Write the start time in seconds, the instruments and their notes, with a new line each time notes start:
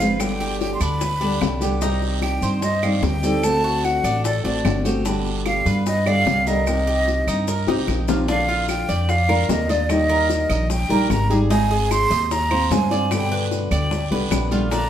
Already playing: upright bass G1, flute F5
0.00 nylon-string guitar F3 G#3 C4 F4, cuban tres B4, high bongo, short guiro, maracas
0.19 nylon-string guitar B2 D3 G3 B3 G4, flute G5, high bongo, long guiro, claves, maracas
0.41 cuban tres G4, high bongo, maracas
0.60 flute G5, high bongo, short guiro, maracas
0.74 flute C6
0.80 upright bass D2, cuban tres D4, flute B5, short guiro, claves, maracas
1.01 cuban tres B4, muted nylon-string guitar stroke, high bongo, long guiro, maracas
1.21 nylon-string guitar D3 G3 B3 G4, cuban tres D4, high bongo, maracas
1.41 upright bass C2, nylon-string guitar D3 G3 B3 G4, high bongo, low bongo, short guiro, claves, maracas
1.61 nylon-string guitar D3 G3 B3 G4, cuban tres G4, high bongo, short guiro, maracas
1.81 nylon-string guitar C3 D#3 G3 C4 G4, cuban tres D#4, high bongo, long guiro, maracas
2.02 high bongo, maracas
2.22 cuban tres G4, flute G5, high bongo, short guiro, claves, maracas
2.42 upright bass G2, cuban tres C5, high bongo, short guiro, maracas
2.62 flute D#5, muted nylon-string guitar stroke, high bongo, long guiro, maracas
2.83 nylon-string guitar D#3 G3 C4 G4, cuban tres D#5, flute F5, claves, maracas
3.02 upright bass D2, nylon-string guitar D#3 G3 C4 G4, flute G5, high bongo, low bongo, short guiro, maracas
3.23 nylon-string guitar D#3 G3 C4 G4, cuban tres A4, high bongo, short guiro, maracas
3.43 nylon-string guitar D3 A3 C4 F#4, flute A5, high bongo, long guiro, claves, maracas
3.64 cuban tres F#4, high bongo, maracas
3.84 flute F#5, high bongo, short guiro, maracas
4.04 upright bass A1, cuban tres D4, short guiro, claves, maracas
4.24 cuban tres A4, flute D5, muted nylon-string guitar stroke, high bongo, long guiro, maracas
4.44 upright bass A1, nylon-string guitar A3 C4 F#4, cuban tres D4, flute D5, high bongo, maracas
4.64 upright bass G1, nylon-string guitar D3 A3 C4 F#4, high bongo, low bongo, short guiro, claves, maracas
4.84 nylon-string guitar A3 C4 F#4, cuban tres G4, high bongo, short guiro, maracas
5.04 nylon-string guitar B2 D3 G3 B3 G4, cuban tres D4, high bongo, long guiro, maracas
5.26 high bongo, maracas
5.46 cuban tres G4, flute F5, high bongo, short guiro, claves, maracas
5.65 upright bass G2, cuban tres B4, high bongo, short guiro, maracas
5.86 flute D#5, muted nylon-string guitar stroke, high bongo, long guiro, maracas
6.06 nylon-string guitar D3 G3 B3 G4, cuban tres D5, flute F5, claves, maracas
6.26 upright bass C2, nylon-string guitar D3 G3 B3 G4, high bongo, low bongo, short guiro, maracas
6.47 nylon-string guitar D3 G3 B3 G4, cuban tres A#4, flute D#5, high bongo, short guiro, maracas
6.66 nylon-string guitar C3 D#3 A#3 C4 G4, high bongo, long guiro, claves, maracas
6.87 cuban tres G4, high bongo, maracas
7.08 high bongo, short guiro, maracas
7.27 upright bass G2, cuban tres D#4, short guiro, claves, maracas
7.48 cuban tres A#4, muted nylon-string guitar stroke, high bongo, long guiro, maracas
7.67 upright bass C2, nylon-string guitar D#3 A#3 C4 G4, cuban tres D#4, high bongo, maracas
7.88 upright bass A#1, nylon-string guitar D#3 A#3 C4 G4, high bongo, short guiro, claves, maracas
8.08 nylon-string guitar D#3 A#3 C4 G4, cuban tres F4, low bongo, short guiro, maracas
8.27 nylon-string guitar D3 A#3 D4 F4, cuban tres D4, flute F5, high bongo, long guiro, maracas
8.48 cuban tres F4, high bongo
8.68 flute G5, high bongo, short guiro, claves, maracas
8.89 upright bass F2, cuban tres D5, short guiro, maracas
9.09 flute F5, muted nylon-string guitar stroke, high bongo, long guiro, maracas
9.29 nylon-string guitar A#3 D4 F4, cuban tres A#4, high bongo, claves
9.49 upright bass D#2, nylon-string guitar D3 A#3 D4 F4, flute D#5, high bongo, low bongo, short guiro, maracas
9.69 nylon-string guitar A#3 D4 F4, flute D5, cuban tres D#5, high bongo, short guiro, maracas
9.89 nylon-string guitar D#3 G3 A#3 D#4 G4, flute D#5, high bongo, long guiro, claves, maracas
10.09 cuban tres A#4, high bongo
10.30 high bongo, short guiro, maracas
10.49 upright bass A#1, cuban tres D#5, short guiro, claves, maracas
10.69 flute G5, muted nylon-string guitar stroke, high bongo, long guiro, maracas
10.89 upright bass A#1, nylon-string guitar G3 A#3 D#4 G4, cuban tres A#4, high bongo, maracas
11.10 upright bass G#1, nylon-string guitar G3 A#3 D#4 G4, flute A#5, high bongo, low bongo, short guiro, claves, maracas
11.30 nylon-string guitar G3 A#3 D#4 G4, cuban tres G#4, high bongo, short guiro, maracas
11.50 nylon-string guitar G#3 C4 F4, cuban tres D#4, flute G#5, high bongo, long guiro, maracas
11.71 cuban tres G#4, high bongo
11.91 flute C6, high bongo, short guiro, claves, maracas
12.10 upright bass D#2, cuban tres D#5, short guiro, maracas
12.31 flute A#5, muted nylon-string guitar stroke, high bongo, long guiro, maracas
12.51 nylon-string guitar C4 F4, cuban tres C5, high bongo, claves
12.70 upright bass G2, nylon-string guitar G#3 C4 F4, flute G#5, high bongo, low bongo, short guiro, maracas
12.91 nylon-string guitar C4 F4, cuban tres D5, high bongo, short guiro, maracas
13.11 nylon-string guitar B2 D3 G3 B3 G4, flute G5, high bongo, long guiro, claves, maracas
13.32 cuban tres B4, high bongo
13.51 high bongo, short guiro, maracas
13.71 upright bass D2, cuban tres D5, flute G5, short guiro, claves, maracas
13.91 muted nylon-string guitar stroke, high bongo, long guiro, maracas
14.11 upright bass C2, nylon-string guitar D3 G3 B3 G4, cuban tres B4, high bongo
14.31 upright bass A#1, nylon-string guitar D3 G3 B3 G4, high bongo, low bongo, short guiro, claves, maracas
14.51 nylon-string guitar D3 G3 B3 G4, cuban tres F4, high bongo, short guiro, maracas
14.71 nylon-string guitar D3 A#3 D4 F4, cuban tres D4, flute A#5, high bongo, long guiro, maracas